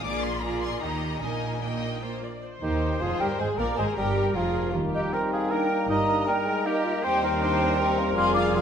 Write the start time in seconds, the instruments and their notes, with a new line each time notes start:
0.04 double bass section A#1, cello section A#2, viola section A#3 F4, violin section G#4 D5 D6
0.24 violin section C6
0.42 viola section A#3 F4, violin section G#4 D5 A#5
0.62 violin section C6
0.82 double bass section D#2, cello section D#3, viola section A#3 D#4, violin section G4 D#5 A#5
1.22 double bass section A#1, cello section A#2, viola section A#3 D#4, violin section A#4 D#5 G#5
1.62 viola section A#3 D#4, violin section D#5 G5
2.02 viola section A#3 F4, violin section C5
2.23 violin section D5
2.42 viola section C5
2.62 cello section D#2, double bass section D#2, bassoon D#3, french horn section D#3, trumpet D#4, violin section D#4 G4, clarinet D#4, oboe G4, flute section D#5
3.00 double bass section F1, cello section F2, bassoon F3, french horn section F3, trumpet F4, clarinet F4, violin section F4 G#4, oboe G#4, flute section F5
3.19 double bass section G1, cello section G2, french horn section G3, bassoon G3, clarinet G4, trumpet G4, violin section G4 A#4, oboe A#4, flute section G5
3.38 double bass section G#1, cello section G#2, french horn section G#3, bassoon G#3, violin section G#4 C5, trumpet G#4, clarinet G#4, oboe C5, flute section G#5
3.58 double bass section A#1, cello section A#2, french horn section A#3, bassoon A#3, trumpet A#4, viola section A#4, clarinet A#4, violin section A#4 D5, oboe D5, flute section A#5
3.78 double bass section G#1, cello section G#2, french horn section G#3, bassoon G#3, trumpet G#4, clarinet G#4, violin section G#4 C5, oboe C5, flute section G#5
3.96 double bass section G1, cello section G2, bassoon G3, french horn section G3, clarinet G4, trumpet G4, violin section G4 A#4, oboe A#4, flute section G5
4.35 double bass section F1, cello section F2, french horn section F3, bassoon F3, clarinet F4, trumpet F4, violin section F4 A#4, viola section G#4, oboe A#4, flute section F5
4.73 double bass section D#2, cello section D#3, french horn section G3 D#4, bassoon A#3, clarinet F4, viola section G4, trumpet A#4
4.93 clarinet D#4, violin section G4, oboe G4, flute section D#5
5.13 violin section A#3 D#4 A#4, bassoon C4, oboe A#4, flute section G5
5.32 violin section G#4, oboe G#4, flute section F5
5.51 bassoon A#3, violin section A#3 D#4 A#4, clarinet D4, oboe A#4, viola section A#4, flute section G5
5.70 clarinet D#4
5.89 double bass section G1, cello section G2, clarinet D#4, viola section G4, oboe D#5, violin section D#5, flute section A#5
6.09 clarinet D4
6.27 bassoon G3, violin section A#3 D#4 A#4, clarinet D#4, viola section A#4, oboe A#4, flute section G5
6.46 bassoon G#3
6.65 bassoon A#3, violin section A#3 D#4 G4, clarinet D#4, oboe G4, flute section D#5
6.84 clarinet F4
7.03 cello section D#2, double bass section D#2, french horn section G3 G4, bassoon C4, clarinet D#4, violin section D#4 G4 C5, trumpet C5, viola section C5, oboe C5, flute section G5
7.24 violin section C4 D#4 A#4, oboe A#4, flute section G5
7.42 bassoon D4, violin section D#4 G4, viola section C5
7.61 violin section C4 D#4
7.79 bassoon C4, clarinet D#4, violin section D#4 G4, viola section A#4
7.98 bassoon A#3, violin section C4 D#4
8.16 double bass section F1, cello section F2, violin section C4 G#4 F5, clarinet F4, viola section G#4, french horn section G#4, trumpet D5, oboe F5, flute section C6
8.34 violin section D4 F4 F5, oboe F5, flute section D6
8.54 violin section C4 G#4 F5, clarinet F4, oboe F5, flute section C6